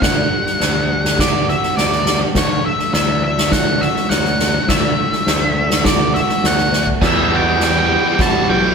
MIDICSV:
0, 0, Header, 1, 6, 480
1, 0, Start_track
1, 0, Tempo, 584226
1, 21, Time_signature, 4, 2, 24, 8
1, 7187, End_track
2, 0, Start_track
2, 0, Title_t, "Lead electric guitar"
2, 0, Program_c, 0, 29
2, 20, Note_on_c, 0, 78, 82
2, 990, Note_on_c, 0, 74, 76
2, 1009, Note_off_c, 0, 78, 0
2, 1209, Note_off_c, 0, 74, 0
2, 1230, Note_on_c, 0, 76, 70
2, 1450, Note_off_c, 0, 76, 0
2, 1454, Note_on_c, 0, 74, 73
2, 1791, Note_off_c, 0, 74, 0
2, 1953, Note_on_c, 0, 73, 75
2, 2181, Note_off_c, 0, 73, 0
2, 2184, Note_on_c, 0, 76, 74
2, 2406, Note_off_c, 0, 76, 0
2, 2416, Note_on_c, 0, 76, 74
2, 2655, Note_off_c, 0, 76, 0
2, 2665, Note_on_c, 0, 76, 74
2, 2892, Note_on_c, 0, 78, 85
2, 2909, Note_off_c, 0, 76, 0
2, 3133, Note_on_c, 0, 76, 73
2, 3143, Note_off_c, 0, 78, 0
2, 3363, Note_on_c, 0, 78, 80
2, 3384, Note_off_c, 0, 76, 0
2, 3850, Note_on_c, 0, 76, 80
2, 3866, Note_off_c, 0, 78, 0
2, 4809, Note_off_c, 0, 76, 0
2, 4813, Note_on_c, 0, 74, 74
2, 5044, Note_off_c, 0, 74, 0
2, 5047, Note_on_c, 0, 76, 74
2, 5300, Note_off_c, 0, 76, 0
2, 5310, Note_on_c, 0, 78, 68
2, 5640, Note_off_c, 0, 78, 0
2, 5797, Note_on_c, 0, 76, 69
2, 6035, Note_off_c, 0, 76, 0
2, 6044, Note_on_c, 0, 79, 74
2, 6266, Note_off_c, 0, 79, 0
2, 6275, Note_on_c, 0, 79, 81
2, 6329, Note_off_c, 0, 79, 0
2, 6333, Note_on_c, 0, 79, 56
2, 6393, Note_off_c, 0, 79, 0
2, 6397, Note_on_c, 0, 79, 65
2, 6453, Note_off_c, 0, 79, 0
2, 6457, Note_on_c, 0, 79, 60
2, 6510, Note_off_c, 0, 79, 0
2, 6513, Note_on_c, 0, 79, 74
2, 6570, Note_off_c, 0, 79, 0
2, 6574, Note_on_c, 0, 79, 59
2, 6632, Note_off_c, 0, 79, 0
2, 6635, Note_on_c, 0, 79, 65
2, 6693, Note_off_c, 0, 79, 0
2, 6696, Note_on_c, 0, 79, 51
2, 6749, Note_off_c, 0, 79, 0
2, 6752, Note_on_c, 0, 81, 97
2, 6977, Note_off_c, 0, 81, 0
2, 6980, Note_on_c, 0, 79, 73
2, 7187, Note_off_c, 0, 79, 0
2, 7187, End_track
3, 0, Start_track
3, 0, Title_t, "Clean electric guitar"
3, 0, Program_c, 1, 27
3, 21, Note_on_c, 1, 50, 58
3, 263, Note_on_c, 1, 55, 54
3, 494, Note_off_c, 1, 50, 0
3, 503, Note_on_c, 1, 50, 56
3, 744, Note_off_c, 1, 55, 0
3, 754, Note_on_c, 1, 55, 57
3, 986, Note_on_c, 1, 59, 54
3, 1221, Note_on_c, 1, 66, 57
3, 1454, Note_off_c, 1, 59, 0
3, 1463, Note_on_c, 1, 59, 55
3, 1687, Note_off_c, 1, 55, 0
3, 1697, Note_on_c, 1, 55, 50
3, 1702, Note_off_c, 1, 50, 0
3, 1938, Note_off_c, 1, 55, 0
3, 1942, Note_off_c, 1, 59, 0
3, 1944, Note_on_c, 1, 50, 63
3, 2186, Note_on_c, 1, 57, 54
3, 2428, Note_on_c, 1, 52, 56
3, 2453, Note_off_c, 1, 66, 0
3, 2659, Note_off_c, 1, 57, 0
3, 2669, Note_on_c, 1, 57, 58
3, 2903, Note_on_c, 1, 61, 63
3, 3140, Note_on_c, 1, 66, 58
3, 3142, Note_off_c, 1, 50, 0
3, 3367, Note_off_c, 1, 61, 0
3, 3377, Note_on_c, 1, 61, 56
3, 3606, Note_off_c, 1, 57, 0
3, 3616, Note_on_c, 1, 57, 55
3, 3624, Note_off_c, 1, 52, 0
3, 3855, Note_on_c, 1, 50, 62
3, 3858, Note_off_c, 1, 57, 0
3, 3858, Note_off_c, 1, 61, 0
3, 4097, Note_on_c, 1, 57, 54
3, 4318, Note_off_c, 1, 50, 0
3, 4328, Note_on_c, 1, 50, 61
3, 4559, Note_off_c, 1, 57, 0
3, 4569, Note_on_c, 1, 57, 61
3, 4805, Note_on_c, 1, 59, 64
3, 5046, Note_off_c, 1, 66, 0
3, 5049, Note_on_c, 1, 66, 64
3, 5279, Note_off_c, 1, 59, 0
3, 5289, Note_on_c, 1, 59, 62
3, 5517, Note_off_c, 1, 57, 0
3, 5527, Note_on_c, 1, 57, 59
3, 5533, Note_off_c, 1, 50, 0
3, 5768, Note_on_c, 1, 40, 64
3, 5773, Note_off_c, 1, 57, 0
3, 5774, Note_off_c, 1, 59, 0
3, 5774, Note_off_c, 1, 66, 0
3, 6003, Note_on_c, 1, 66, 65
3, 6252, Note_on_c, 1, 55, 59
3, 6495, Note_on_c, 1, 59, 62
3, 6726, Note_off_c, 1, 66, 0
3, 6736, Note_on_c, 1, 66, 66
3, 6968, Note_off_c, 1, 55, 0
3, 6973, Note_off_c, 1, 40, 0
3, 6978, Note_on_c, 1, 55, 62
3, 7187, Note_off_c, 1, 55, 0
3, 7187, Note_off_c, 1, 59, 0
3, 7187, Note_off_c, 1, 66, 0
3, 7187, End_track
4, 0, Start_track
4, 0, Title_t, "Overdriven electric guitar"
4, 0, Program_c, 2, 29
4, 5766, Note_on_c, 2, 52, 69
4, 5771, Note_on_c, 2, 55, 74
4, 5824, Note_off_c, 2, 52, 0
4, 5827, Note_off_c, 2, 55, 0
4, 5827, Note_on_c, 2, 52, 45
4, 5830, Note_on_c, 2, 55, 49
4, 5884, Note_off_c, 2, 52, 0
4, 5887, Note_on_c, 2, 52, 53
4, 5894, Note_off_c, 2, 55, 0
4, 5904, Note_on_c, 2, 55, 63
4, 5951, Note_off_c, 2, 52, 0
4, 5960, Note_off_c, 2, 55, 0
4, 5963, Note_on_c, 2, 52, 50
4, 5963, Note_on_c, 2, 55, 52
4, 6022, Note_off_c, 2, 55, 0
4, 6023, Note_off_c, 2, 52, 0
4, 6025, Note_on_c, 2, 55, 58
4, 6026, Note_on_c, 2, 52, 52
4, 6086, Note_off_c, 2, 52, 0
4, 6089, Note_off_c, 2, 55, 0
4, 6089, Note_on_c, 2, 52, 51
4, 6097, Note_on_c, 2, 55, 50
4, 6137, Note_off_c, 2, 52, 0
4, 6140, Note_on_c, 2, 52, 59
4, 6150, Note_off_c, 2, 55, 0
4, 6154, Note_on_c, 2, 55, 64
4, 6204, Note_off_c, 2, 52, 0
4, 6211, Note_on_c, 2, 52, 52
4, 6214, Note_off_c, 2, 55, 0
4, 6217, Note_on_c, 2, 55, 55
4, 6275, Note_off_c, 2, 52, 0
4, 6278, Note_off_c, 2, 55, 0
4, 6281, Note_on_c, 2, 55, 65
4, 6291, Note_on_c, 2, 52, 61
4, 6339, Note_off_c, 2, 52, 0
4, 6342, Note_on_c, 2, 52, 53
4, 6345, Note_off_c, 2, 55, 0
4, 6352, Note_on_c, 2, 55, 57
4, 6402, Note_off_c, 2, 55, 0
4, 6405, Note_off_c, 2, 52, 0
4, 6405, Note_on_c, 2, 55, 69
4, 6408, Note_on_c, 2, 52, 60
4, 6467, Note_off_c, 2, 52, 0
4, 6469, Note_off_c, 2, 55, 0
4, 6470, Note_on_c, 2, 52, 48
4, 6473, Note_on_c, 2, 55, 61
4, 6534, Note_off_c, 2, 52, 0
4, 6535, Note_off_c, 2, 55, 0
4, 6537, Note_on_c, 2, 52, 60
4, 6538, Note_on_c, 2, 55, 62
4, 6592, Note_off_c, 2, 55, 0
4, 6595, Note_on_c, 2, 55, 54
4, 6602, Note_off_c, 2, 52, 0
4, 6605, Note_on_c, 2, 52, 55
4, 6659, Note_off_c, 2, 55, 0
4, 6664, Note_on_c, 2, 55, 63
4, 6666, Note_off_c, 2, 52, 0
4, 6670, Note_on_c, 2, 52, 61
4, 6721, Note_off_c, 2, 52, 0
4, 6725, Note_on_c, 2, 52, 50
4, 6728, Note_off_c, 2, 55, 0
4, 6737, Note_on_c, 2, 55, 55
4, 6785, Note_off_c, 2, 52, 0
4, 6788, Note_on_c, 2, 52, 64
4, 6795, Note_off_c, 2, 55, 0
4, 6798, Note_on_c, 2, 55, 66
4, 6853, Note_off_c, 2, 52, 0
4, 6855, Note_off_c, 2, 55, 0
4, 6858, Note_on_c, 2, 55, 54
4, 6859, Note_on_c, 2, 52, 49
4, 6911, Note_off_c, 2, 55, 0
4, 6915, Note_on_c, 2, 55, 65
4, 6919, Note_off_c, 2, 52, 0
4, 6922, Note_on_c, 2, 52, 59
4, 6975, Note_off_c, 2, 52, 0
4, 6979, Note_off_c, 2, 55, 0
4, 6979, Note_on_c, 2, 52, 51
4, 6985, Note_on_c, 2, 55, 56
4, 7040, Note_off_c, 2, 52, 0
4, 7043, Note_on_c, 2, 52, 62
4, 7049, Note_off_c, 2, 55, 0
4, 7054, Note_on_c, 2, 55, 68
4, 7107, Note_off_c, 2, 52, 0
4, 7109, Note_off_c, 2, 55, 0
4, 7112, Note_on_c, 2, 55, 58
4, 7117, Note_on_c, 2, 52, 49
4, 7170, Note_off_c, 2, 52, 0
4, 7176, Note_off_c, 2, 55, 0
4, 7187, End_track
5, 0, Start_track
5, 0, Title_t, "Picked electric bass"
5, 0, Program_c, 3, 34
5, 15, Note_on_c, 3, 38, 73
5, 210, Note_off_c, 3, 38, 0
5, 498, Note_on_c, 3, 38, 70
5, 1268, Note_off_c, 3, 38, 0
5, 1458, Note_on_c, 3, 38, 62
5, 1843, Note_off_c, 3, 38, 0
5, 1934, Note_on_c, 3, 38, 69
5, 2129, Note_off_c, 3, 38, 0
5, 2414, Note_on_c, 3, 38, 84
5, 3185, Note_off_c, 3, 38, 0
5, 3378, Note_on_c, 3, 38, 68
5, 3763, Note_off_c, 3, 38, 0
5, 3856, Note_on_c, 3, 38, 75
5, 4050, Note_off_c, 3, 38, 0
5, 4331, Note_on_c, 3, 38, 81
5, 5103, Note_off_c, 3, 38, 0
5, 5292, Note_on_c, 3, 38, 69
5, 5679, Note_off_c, 3, 38, 0
5, 5765, Note_on_c, 3, 40, 90
5, 6539, Note_off_c, 3, 40, 0
5, 6982, Note_on_c, 3, 35, 80
5, 7172, Note_off_c, 3, 35, 0
5, 7187, End_track
6, 0, Start_track
6, 0, Title_t, "Drums"
6, 17, Note_on_c, 9, 36, 88
6, 18, Note_on_c, 9, 38, 82
6, 99, Note_off_c, 9, 36, 0
6, 100, Note_off_c, 9, 38, 0
6, 379, Note_on_c, 9, 38, 25
6, 461, Note_off_c, 9, 38, 0
6, 495, Note_on_c, 9, 38, 66
6, 577, Note_off_c, 9, 38, 0
6, 860, Note_on_c, 9, 38, 62
6, 942, Note_off_c, 9, 38, 0
6, 977, Note_on_c, 9, 36, 88
6, 980, Note_on_c, 9, 38, 88
6, 1059, Note_off_c, 9, 36, 0
6, 1062, Note_off_c, 9, 38, 0
6, 1218, Note_on_c, 9, 38, 25
6, 1300, Note_off_c, 9, 38, 0
6, 1337, Note_on_c, 9, 38, 28
6, 1420, Note_off_c, 9, 38, 0
6, 1457, Note_on_c, 9, 38, 64
6, 1539, Note_off_c, 9, 38, 0
6, 1578, Note_on_c, 9, 38, 28
6, 1660, Note_off_c, 9, 38, 0
6, 1689, Note_on_c, 9, 38, 63
6, 1771, Note_off_c, 9, 38, 0
6, 1928, Note_on_c, 9, 38, 88
6, 1932, Note_on_c, 9, 36, 85
6, 2010, Note_off_c, 9, 38, 0
6, 2015, Note_off_c, 9, 36, 0
6, 2293, Note_on_c, 9, 38, 26
6, 2375, Note_off_c, 9, 38, 0
6, 2409, Note_on_c, 9, 38, 67
6, 2491, Note_off_c, 9, 38, 0
6, 2774, Note_on_c, 9, 38, 69
6, 2856, Note_off_c, 9, 38, 0
6, 2889, Note_on_c, 9, 38, 96
6, 2893, Note_on_c, 9, 36, 87
6, 2971, Note_off_c, 9, 38, 0
6, 2975, Note_off_c, 9, 36, 0
6, 3132, Note_on_c, 9, 38, 29
6, 3215, Note_off_c, 9, 38, 0
6, 3254, Note_on_c, 9, 38, 27
6, 3337, Note_off_c, 9, 38, 0
6, 3367, Note_on_c, 9, 38, 65
6, 3450, Note_off_c, 9, 38, 0
6, 3489, Note_on_c, 9, 38, 30
6, 3571, Note_off_c, 9, 38, 0
6, 3609, Note_on_c, 9, 38, 64
6, 3691, Note_off_c, 9, 38, 0
6, 3848, Note_on_c, 9, 38, 90
6, 3852, Note_on_c, 9, 36, 91
6, 3930, Note_off_c, 9, 38, 0
6, 3934, Note_off_c, 9, 36, 0
6, 4207, Note_on_c, 9, 38, 28
6, 4290, Note_off_c, 9, 38, 0
6, 4327, Note_on_c, 9, 38, 72
6, 4409, Note_off_c, 9, 38, 0
6, 4686, Note_on_c, 9, 38, 70
6, 4768, Note_off_c, 9, 38, 0
6, 4804, Note_on_c, 9, 38, 95
6, 4808, Note_on_c, 9, 36, 98
6, 4886, Note_off_c, 9, 38, 0
6, 4890, Note_off_c, 9, 36, 0
6, 5048, Note_on_c, 9, 38, 30
6, 5130, Note_off_c, 9, 38, 0
6, 5166, Note_on_c, 9, 38, 29
6, 5248, Note_off_c, 9, 38, 0
6, 5287, Note_on_c, 9, 38, 66
6, 5370, Note_off_c, 9, 38, 0
6, 5403, Note_on_c, 9, 38, 28
6, 5485, Note_off_c, 9, 38, 0
6, 5527, Note_on_c, 9, 38, 44
6, 5609, Note_off_c, 9, 38, 0
6, 5644, Note_on_c, 9, 43, 66
6, 5726, Note_off_c, 9, 43, 0
6, 5761, Note_on_c, 9, 38, 47
6, 5761, Note_on_c, 9, 49, 102
6, 5765, Note_on_c, 9, 36, 94
6, 5843, Note_off_c, 9, 38, 0
6, 5843, Note_off_c, 9, 49, 0
6, 5847, Note_off_c, 9, 36, 0
6, 6245, Note_on_c, 9, 38, 48
6, 6327, Note_off_c, 9, 38, 0
6, 6729, Note_on_c, 9, 38, 54
6, 6730, Note_on_c, 9, 36, 102
6, 6811, Note_off_c, 9, 38, 0
6, 6812, Note_off_c, 9, 36, 0
6, 7187, End_track
0, 0, End_of_file